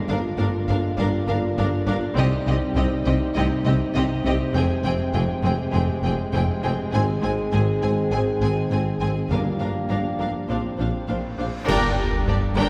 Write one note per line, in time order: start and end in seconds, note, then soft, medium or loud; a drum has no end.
0.00 0.65 G2 medium
0.00 2.17 D3 medium
0.00 0.99 G#3 medium
0.00 2.13 A#3 loud
0.00 2.14 F4 loud
0.08 0.16 G1 medium
0.08 0.21 G1 medium
0.08 0.17 G2 medium
0.08 0.17 D4 medium
0.08 0.18 A#4 medium
0.08 0.17 F5 medium
0.38 0.46 G1 medium
0.38 0.51 G1 medium
0.38 0.48 G2 loud
0.38 0.47 D4 medium
0.38 0.47 A#4 medium
0.38 0.46 F5 medium
0.68 0.76 G1 medium
0.68 0.80 G1 medium
0.68 0.77 G2 medium
0.68 0.77 D4 medium
0.68 0.77 A#4 medium
0.68 0.76 F5 medium
0.98 1.06 G1 medium
0.98 1.10 G1 medium
0.98 1.07 G2 medium
0.98 4.38 G3 medium
0.98 1.06 D4 medium
0.98 1.08 A#4 medium
0.98 1.06 F5 medium
1.27 1.36 G1 medium
1.27 1.40 G1 medium
1.27 1.36 G2 medium
1.27 1.36 D4 medium
1.27 1.35 A#4 medium
1.27 1.37 F5 medium
1.57 1.70 G1 medium
1.57 1.66 G1 medium
1.57 1.66 G2 medium
1.57 1.65 D4 medium
1.57 1.66 A#4 medium
1.57 1.66 F5 medium
1.87 1.95 G1 medium
1.87 2.00 G1 medium
1.87 1.95 G2 medium
1.87 1.95 D4 medium
1.87 1.96 A#4 medium
1.87 1.96 F5 medium
2.16 2.24 C2 loud
2.16 2.29 C2 medium
2.16 2.25 C3 loud
2.16 6.93 C3 medium
2.16 2.25 C4 medium
2.16 6.76 C4 loud
2.16 4.56 D#4 loud
2.16 2.26 G4 medium
2.16 2.26 D#5 medium
2.47 2.55 C2 medium
2.47 2.59 C2 medium
2.47 2.56 C3 medium
2.47 2.55 C4 medium
2.47 2.55 G4 medium
2.47 2.55 D#5 medium
2.76 2.84 C2 loud
2.76 2.88 C2 medium
2.76 2.85 C3 medium
2.76 2.85 C4 medium
2.76 2.84 G4 medium
2.76 2.84 D#5 medium
3.05 3.13 C2 medium
3.05 3.17 C2 medium
3.05 3.14 C3 medium
3.05 3.14 C4 medium
3.05 3.14 G4 medium
3.05 3.14 D#5 medium
3.34 3.42 C2 medium
3.34 3.47 C2 loud
3.34 3.44 C3 loud
3.34 3.45 C4 medium
3.34 3.46 G4 medium
3.34 3.43 D#5 medium
3.65 3.73 C2 medium
3.65 3.77 C2 medium
3.65 3.74 C3 medium
3.65 3.75 C4 medium
3.65 3.75 G4 medium
3.65 3.73 D#5 medium
3.94 4.06 C2 medium
3.94 4.03 C2 medium
3.94 4.03 C3 medium
3.94 4.04 C4 medium
3.94 4.05 G4 medium
3.94 4.03 D#5 medium
4.25 4.33 C2 medium
4.25 4.37 C2 medium
4.25 4.33 C3 medium
4.25 4.34 C4 medium
4.25 4.35 G4 medium
4.25 4.34 D#5 medium
4.54 4.63 F1 loud
4.54 4.67 F1 medium
4.54 4.62 F2 medium
4.54 9.26 G#3 medium
4.54 4.63 C4 medium
4.54 6.76 G4 loud
4.54 4.64 G#4 medium
4.54 4.63 G5 medium
4.84 4.92 F1 medium
4.84 4.97 F1 medium
4.84 4.92 F2 medium
4.84 4.92 C4 medium
4.84 4.93 G#4 medium
4.84 4.92 G5 medium
5.14 5.26 F1 medium
5.14 5.22 F1 medium
5.14 5.22 F2 medium
5.14 5.22 C4 medium
5.14 5.22 G#4 medium
5.14 5.22 G5 medium
5.43 5.52 F1 medium
5.43 5.56 F1 medium
5.43 5.52 F2 medium
5.43 5.52 C4 medium
5.43 5.51 G#4 medium
5.43 5.53 G5 medium
5.73 5.85 F1 medium
5.73 5.82 F1 medium
5.73 5.82 F2 medium
5.73 5.81 C4 medium
5.73 5.81 G#4 medium
5.73 5.82 G5 medium
6.03 6.11 F1 medium
6.03 6.15 F1 medium
6.03 6.11 F2 medium
6.03 6.12 C4 medium
6.03 6.12 G#4 medium
6.03 6.12 G5 medium
6.33 6.45 F1 medium
6.33 6.41 F1 medium
6.33 6.41 F2 medium
6.33 6.42 C4 medium
6.33 6.42 G#4 medium
6.33 6.41 G5 medium
6.62 6.74 F1 medium
6.62 6.72 F1 medium
6.62 6.71 F2 medium
6.62 6.72 C4 medium
6.62 6.72 G#4 medium
6.62 6.71 G5 medium
6.92 7.04 G#1 medium
6.92 7.02 G#1 medium
6.92 7.01 G#2 medium
6.92 9.26 D#3 medium
6.92 9.27 C4 loud
6.92 7.02 C4 medium
6.92 7.00 G#4 medium
6.92 9.26 G#4 loud
6.92 7.01 G#5 medium
7.21 7.34 G#1 medium
7.21 7.32 G#1 medium
7.21 7.30 G#2 medium
7.21 7.31 C4 medium
7.21 7.30 G#4 medium
7.21 7.31 G#5 medium
7.52 7.64 G#1 medium
7.52 7.61 G#1 medium
7.52 7.60 G#2 medium
7.52 7.61 C4 medium
7.52 7.61 G#4 medium
7.52 7.60 G#5 medium
7.82 7.94 G#1 medium
7.82 7.91 G#1 medium
7.82 7.90 G#2 medium
7.82 7.90 C4 medium
7.82 7.90 G#4 medium
7.82 7.91 G#5 medium
8.11 8.19 G#1 medium
8.11 8.24 G#1 medium
8.11 8.19 G#2 medium
8.11 8.20 C4 medium
8.11 8.19 G#4 medium
8.11 8.21 G#5 medium
8.41 8.49 G#1 medium
8.41 8.54 G#1 medium
8.41 8.49 G#2 medium
8.41 8.49 C4 medium
8.41 8.50 G#4 medium
8.41 8.51 G#5 medium
8.70 8.78 G#1 medium
8.70 8.83 G#1 medium
8.70 8.79 G#2 medium
8.70 8.79 C4 medium
8.70 8.80 G#4 medium
8.70 8.79 G#5 medium
9.00 9.08 G#1 medium
9.00 9.13 G#1 medium
9.00 9.09 G#2 medium
9.00 9.09 C4 medium
9.00 9.09 G#4 medium
9.00 9.08 G#5 medium
9.30 9.38 G1 medium
9.30 9.42 G1 medium
9.30 10.16 G2 loud
9.30 9.39 G2 medium
9.30 11.34 F3 medium
9.30 10.47 A#3 medium
9.30 11.38 D4 medium
9.30 9.39 D4 medium
9.30 10.47 G4 medium
9.30 9.39 A#4 medium
9.30 9.38 F5 medium
9.30 reverse cymbal medium
9.59 9.67 G1 medium
9.59 9.72 G1 medium
9.59 9.68 G2 medium
9.59 9.68 D4 medium
9.59 9.68 A#4 medium
9.59 9.67 F5 medium
9.89 9.97 G1 medium
9.89 10.02 G1 medium
9.89 9.98 G2 medium
9.89 9.98 D4 medium
9.89 9.97 A#4 medium
9.89 9.98 F5 medium
10.18 10.31 G1 medium
10.18 10.28 G1 medium
10.18 10.28 G2 medium
10.18 10.27 D4 medium
10.18 10.26 A#4 medium
10.18 10.29 F5 medium
10.48 10.57 A#1 medium
10.48 10.61 A#1 medium
10.48 10.57 A#2 medium
10.48 11.38 C4 medium
10.48 10.57 D4 medium
10.48 11.39 F4 medium
10.48 10.56 C5 medium
10.48 10.58 F5 medium
10.78 10.86 A#1 medium
10.78 10.90 A#1 medium
10.78 10.87 A#2 medium
10.78 10.86 D4 medium
10.78 10.86 C5 medium
10.78 10.88 F5 medium
11.08 11.20 A#1 medium
11.08 11.16 A#1 medium
11.08 11.17 A#2 medium
11.08 11.17 D4 medium
11.08 11.17 C5 medium
11.08 11.17 F5 medium
11.37 11.50 A#1 medium
11.37 11.46 A#1 medium
11.37 11.47 A#2 medium
11.37 11.46 D4 medium
11.37 11.46 C5 medium
11.37 11.47 F5 medium
11.66 11.95 G1 loud
11.66 11.96 G1 loud
11.66 12.53 G2 loud
11.66 11.96 G2 loud
11.66 12.69 D3 loud
11.66 12.69 G3 loud
11.66 12.69 A#3 loud
11.66 11.96 D4 loud
11.66 12.69 G4 loud
11.66 11.96 A#4 loud
11.66 11.96 G5 loud
11.66 concert bass drum medium
11.66 crash medium
11.66 sub drop medium
11.97 12.05 G1 medium
11.97 12.10 G1 medium
11.97 12.06 G2 medium
11.97 12.06 D4 medium
11.97 12.07 A#4 medium
11.97 12.07 G5 medium
12.26 12.34 G1 medium
12.26 12.39 G1 medium
12.26 12.36 G2 medium
12.26 12.36 D4 medium
12.26 12.35 G4 medium
12.26 12.36 D5 medium
12.56 12.64 G1 loud
12.56 12.69 G1 loud
12.56 12.65 G2 loud
12.56 12.69 D4 medium
12.56 12.69 A#4 medium
12.56 12.69 G5 medium